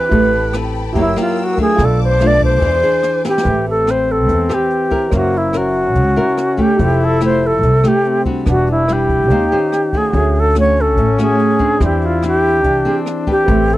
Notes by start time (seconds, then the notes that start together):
Already playing: C4 D4 G4 G#4 B4 C5
0.09 A1 A3 E4 G4 G5 A5 B5, kick, closed hi-hat
0.13 B4
0.33 closed hi-hat
0.53 C4 G4 B4, cross-stick, closed hi-hat
0.75 closed hi-hat
0.93 F#1 F#3 A#3 E4 G4 A#4 E6, kick, closed hi-hat
0.98 E4 C#5
1.16 A#3 E4 G4, cross-stick, closed hi-hat
1.21 F4
1.37 closed hi-hat
1.44 F#4
1.57 A3 D4 F4 G#4, kick, closed hi-hat
1.76 B1 B2 F4 A4 B4 A5 D6, kick, cross-stick, closed hi-hat
1.80 B4 D5
1.85 A4
2.00 C5, closed hi-hat
2.20 A3 D4 F4, cross-stick, closed hi-hat
2.27 D5
2.40 kick, closed hi-hat
2.44 C5
2.59 E2 E3 D4 G#4 C5 G#5, kick, closed hi-hat
2.63 C5 D5
2.82 D4 G#4 C5, closed hi-hat
3.03 cross-stick, closed hi-hat
3.24 C4 G4 B4, snare
3.38 snare
3.42 A1 A3 C4 G4 B4, kick, closed hi-hat
3.48 E5
3.66 A4, closed hi-hat
3.87 C4 G4 B4 C5, cross-stick, closed hi-hat
4.08 A4, closed hi-hat
4.28 E2 E3, kick, closed hi-hat
4.49 C4 G4 B4, cross-stick, closed hi-hat
4.54 G4
4.71 closed hi-hat
4.91 C4 E4 A#4, kick, closed hi-hat
5.08 F#1 F#3 A#3 A#4 C5, kick, cross-stick, closed hi-hat
5.13 C#4 F#4 E5
5.33 closed hi-hat
5.37 E4
5.53 C#4 E4 A#4, cross-stick, closed hi-hat
5.57 F#4
5.74 closed hi-hat
5.95 C#2 C#3, kick, closed hi-hat
6.16 E4 A#4, closed hi-hat
6.37 cross-stick, closed hi-hat
6.57 A3 E4 G4, kick, closed hi-hat
6.62 G4
6.76 F1 F3 E4 G4 A4, kick, closed hi-hat
6.80 C5 E5
7.00 A4, closed hi-hat
7.21 A3 E4 G4, cross-stick, closed hi-hat
7.25 C5
7.42 closed hi-hat
7.46 A4
7.63 C2 C3, kick, closed hi-hat
7.84 A3 E4 G4, cross-stick, closed hi-hat
7.88 G4
8.04 C4, closed hi-hat
8.25 G3 D4 F#4, kick, closed hi-hat
8.46 E1 E3 D4 B4 D5, kick, cross-stick, closed hi-hat
8.50 F#4 F#5
8.67 closed hi-hat
8.71 E4
8.88 G3 D4 E4, cross-stick, closed hi-hat
8.93 G4
9.09 kick, closed hi-hat
9.26 D#2 D#3 D#4 G4 C5, kick, closed hi-hat
9.31 C#4 G4 C5 F5
9.51 C#4 G4 C5, closed hi-hat
9.72 cross-stick, closed hi-hat
9.93 A3 C#4 F#4, kick, closed hi-hat
9.97 G#4
10.10 D2 A3 C#4 F#4, kick, closed hi-hat
10.14 D3 C#5 E5
10.35 closed hi-hat
10.40 A4
10.55 A3 C#4 F#4, cross-stick, closed hi-hat
10.60 C#5
10.76 closed hi-hat
10.81 A4
10.97 A1 A2, kick, closed hi-hat
11.18 A3 C#4 F#4 G#4, cross-stick, closed hi-hat
11.39 closed hi-hat
11.59 C4 D4 G#4, kick, closed hi-hat
11.79 E2 E3 E4 G4 C5, kick, cross-stick, closed hi-hat
11.83 G4 D5
12.02 closed hi-hat
12.06 F4
12.22 C4 D4, cross-stick, closed hi-hat
12.27 G4
12.44 closed hi-hat
12.64 C2 E3 D4, kick, closed hi-hat
12.85 C4 D4 G#4, closed hi-hat
13.06 cross-stick, closed hi-hat
13.27 C4 G4 B4, kick, closed hi-hat
13.31 G4
13.44 A1 A3 C4 G4 B4, kick, closed hi-hat
13.50 E5
13.69 closed hi-hat
13.74 A4